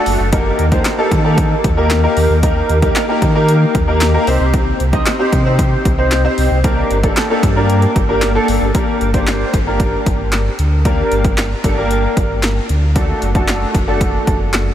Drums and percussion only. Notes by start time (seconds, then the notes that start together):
0.06 open hi-hat
0.33 kick, closed hi-hat
0.59 closed hi-hat
0.72 kick, closed hi-hat
0.85 snare, clap, closed hi-hat
1.11 kick, closed hi-hat
1.38 kick, closed hi-hat
1.64 kick, closed hi-hat
1.90 snare, clap, closed hi-hat
2.17 open hi-hat
2.43 kick, closed hi-hat
2.69 closed hi-hat
2.82 kick, closed hi-hat
2.96 snare, clap, closed hi-hat
3.22 kick, closed hi-hat
3.49 closed hi-hat
3.75 kick, closed hi-hat
4.01 snare, clap, closed hi-hat
4.27 open hi-hat
4.54 kick, closed hi-hat
4.80 closed hi-hat
4.93 kick, closed hi-hat
5.06 snare, clap, closed hi-hat
5.33 kick, closed hi-hat
5.59 kick, closed hi-hat
5.85 kick, closed hi-hat
6.11 snare, clap, closed hi-hat
6.38 open hi-hat
6.64 kick, closed hi-hat
6.91 closed hi-hat
7.03 kick, closed hi-hat
7.17 snare, clap, closed hi-hat
7.43 kick, closed hi-hat
7.70 closed hi-hat
7.82 closed hi-hat
7.96 kick, closed hi-hat
8.22 snare, clap, closed hi-hat
8.48 open hi-hat
8.75 kick, closed hi-hat
9.01 closed hi-hat
9.14 kick, closed hi-hat
9.27 snare, clap, closed hi-hat
9.54 kick, closed hi-hat
9.80 kick, closed hi-hat
10.06 kick, closed hi-hat
10.32 snare, clap, closed hi-hat
10.59 closed hi-hat
10.85 kick, closed hi-hat
11.12 closed hi-hat
11.24 kick, closed hi-hat
11.38 snare, clap, closed hi-hat
11.64 kick, closed hi-hat
11.91 closed hi-hat
12.17 kick, closed hi-hat
12.43 snare, clap, closed hi-hat
12.69 closed hi-hat
12.96 kick, closed hi-hat
13.22 closed hi-hat
13.35 kick, closed hi-hat
13.48 snare, clap, closed hi-hat
13.75 kick, closed hi-hat
14.01 kick, closed hi-hat
14.27 kick, closed hi-hat
14.53 snare, clap, closed hi-hat